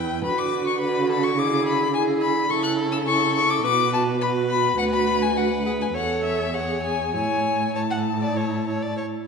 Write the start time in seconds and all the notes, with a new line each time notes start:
Already playing: E2 E4 B4 G5
0.24 D3 F#4 B4 B5
0.38 D6
0.67 C#6
0.80 F#4 B4 B5
1.09 A4 B5
1.24 C#6
1.37 E4 G#4 D6
1.66 B5
1.93 E4 G#4 G#5
2.21 B5
2.50 C#3 E4 A4 C#6
2.64 F#6
2.92 E6
3.07 E4 A4 C#6
3.36 C#6
3.50 D6
3.64 B2 F#4 B4 D6
3.93 A5
4.21 F#4 B4 B5
4.50 B5
4.79 D2 F#4 B4 F#5
4.93 B5
5.23 G#5
5.37 F#4 B4 F#5
5.66 G#4 F#5
5.81 G#5
5.94 E2 A4 C#5 F#5
6.24 E5
6.54 G#4 C#5 F#5
6.83 G#5
7.14 A2 E4 C#5 G#5
7.75 E4 C#5 A5
7.91 F#5
8.22 D5
8.36 C#5
8.67 C#5
8.82 D5
8.97 C#5